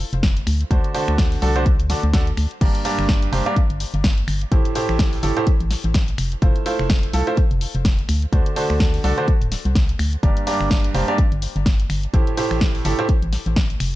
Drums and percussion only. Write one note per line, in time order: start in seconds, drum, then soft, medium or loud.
0.13 closed hi-hat soft
0.23 kick loud
0.23 snare loud
0.23 closed hi-hat medium
0.37 closed hi-hat medium
0.47 finger snap medium
0.47 open hi-hat loud
0.61 closed hi-hat soft
0.71 kick loud
0.71 closed hi-hat medium
0.84 closed hi-hat medium
0.95 open hi-hat loud
1.08 finger snap medium
1.08 closed hi-hat soft
1.18 kick loud
1.18 snare loud
1.18 closed hi-hat medium
1.32 open hi-hat medium
1.42 open hi-hat loud
1.56 closed hi-hat soft
1.66 kick loud
1.66 closed hi-hat medium
1.80 closed hi-hat medium
1.90 snare soft
1.90 open hi-hat loud
2.03 closed hi-hat soft
2.14 kick loud
2.14 snare loud
2.14 closed hi-hat medium
2.27 closed hi-hat medium
2.37 finger snap medium
2.37 open hi-hat loud
2.51 closed hi-hat soft
2.61 kick loud
2.61 closed hi-hat medium
2.61 crash medium
2.75 closed hi-hat medium
2.85 open hi-hat loud
2.99 finger snap medium
3.09 kick loud
3.09 snare loud
3.09 closed hi-hat medium
3.22 closed hi-hat medium
3.33 open hi-hat loud
3.46 closed hi-hat soft
3.56 kick loud
3.56 closed hi-hat medium
3.70 closed hi-hat medium
3.80 open hi-hat loud
3.94 closed hi-hat soft
4.04 kick loud
4.04 snare loud
4.04 closed hi-hat medium
4.18 closed hi-hat medium
4.28 finger snap medium
4.28 open hi-hat loud
4.42 closed hi-hat soft
4.52 kick loud
4.52 closed hi-hat medium
4.65 closed hi-hat medium
4.75 open hi-hat loud
4.89 finger snap medium
4.99 kick loud
4.99 snare loud
4.99 closed hi-hat medium
5.13 open hi-hat medium
5.23 open hi-hat loud
5.37 closed hi-hat soft
5.47 kick loud
5.47 closed hi-hat medium
5.60 closed hi-hat medium
5.71 snare soft
5.71 open hi-hat loud
5.84 closed hi-hat soft
5.94 kick loud
5.94 snare loud
5.94 closed hi-hat medium
6.08 closed hi-hat medium
6.18 finger snap medium
6.18 open hi-hat loud
6.32 closed hi-hat soft
6.42 kick loud
6.42 closed hi-hat medium
6.56 closed hi-hat medium
6.66 open hi-hat loud
6.79 finger snap medium
6.90 kick loud
6.90 snare loud
6.90 closed hi-hat medium
7.03 closed hi-hat medium
7.13 open hi-hat loud
7.27 closed hi-hat soft
7.37 kick loud
7.37 closed hi-hat medium
7.51 closed hi-hat medium
7.61 open hi-hat loud
7.75 closed hi-hat soft
7.85 kick loud
7.85 snare loud
7.85 closed hi-hat medium
7.99 closed hi-hat medium
8.09 finger snap medium
8.09 open hi-hat loud
8.22 closed hi-hat soft
8.33 kick loud
8.33 closed hi-hat medium
8.46 closed hi-hat medium
8.56 open hi-hat loud
8.70 finger snap medium
8.80 kick loud
8.80 snare loud
8.80 closed hi-hat medium
8.94 open hi-hat medium
9.04 open hi-hat loud
9.18 closed hi-hat soft
9.28 kick loud
9.28 closed hi-hat medium
9.42 closed hi-hat medium
9.52 snare soft
9.52 open hi-hat loud
9.65 closed hi-hat soft
9.75 kick loud
9.75 snare loud
9.75 closed hi-hat medium
9.89 closed hi-hat soft
9.99 finger snap medium
9.99 open hi-hat loud
10.13 closed hi-hat soft
10.23 kick loud
10.23 closed hi-hat medium
10.37 closed hi-hat medium
10.47 open hi-hat loud
10.61 finger snap medium
10.71 kick loud
10.71 snare loud
10.71 closed hi-hat medium
10.84 closed hi-hat medium
10.95 open hi-hat loud
11.08 closed hi-hat soft
11.18 kick loud
11.18 closed hi-hat medium
11.32 closed hi-hat soft
11.42 open hi-hat loud
11.56 closed hi-hat soft
11.66 kick loud
11.66 snare loud
11.66 closed hi-hat medium
11.80 closed hi-hat soft
11.90 finger snap medium
11.90 open hi-hat loud
12.03 closed hi-hat soft
12.14 kick loud
12.14 closed hi-hat medium
12.27 closed hi-hat medium
12.37 open hi-hat loud
12.51 finger snap medium
12.61 kick loud
12.61 snare loud
12.61 closed hi-hat medium
12.75 open hi-hat medium
12.85 open hi-hat loud
12.99 closed hi-hat soft
13.09 kick loud
13.09 closed hi-hat medium
13.22 closed hi-hat medium
13.33 snare soft
13.33 open hi-hat loud
13.46 closed hi-hat soft
13.56 kick loud
13.56 snare loud
13.56 closed hi-hat medium
13.70 closed hi-hat soft
13.80 finger snap medium
13.80 open hi-hat loud